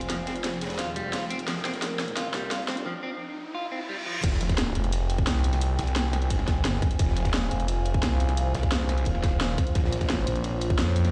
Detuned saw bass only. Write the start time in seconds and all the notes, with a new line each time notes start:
0.10 F1
0.70 E1
0.96 F1
1.48 F1
2.34 C2
2.68 F1
4.24 F1
5.79 C2
6.31 G1
6.99 F1
8.55 C2
9.06 D#1
9.75 A#1